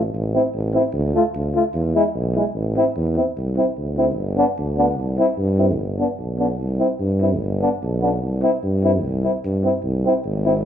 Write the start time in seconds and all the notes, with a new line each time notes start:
Already playing: A1
0.14 A1
0.34 C4 E4
0.54 A1
0.73 C4 E4
0.93 D2
1.14 A3 F4
1.34 D2
1.54 A3 F4
1.74 E2
1.95 G#3 E4
2.15 B1
2.35 G#3 E4
2.55 A1
2.76 C4 E4
2.97 E2
3.16 C4 E4
3.37 C2
3.57 C4 E4
3.77 D2
3.98 C4 E4
4.17 G1
4.37 B3 D4
4.58 D2
4.77 B3 D4
4.98 C2
5.17 C4 E4
5.38 G2
5.58 C4 E4
5.78 G1
5.99 B3 D4
6.19 B1
6.39 B3 D4
6.59 C2
6.79 C4 E4
7.00 G2
7.21 C4 E4
7.41 G1
7.61 B3 D4
7.83 B1
8.01 B3 D4
8.22 C2
8.42 C4 E4
8.63 G2
8.83 C4 E4
9.05 C2
9.23 C4 E4
9.45 G2
9.64 C4 E4
9.84 C2
10.05 C4 E4
10.25 G#1
10.45 C4 E4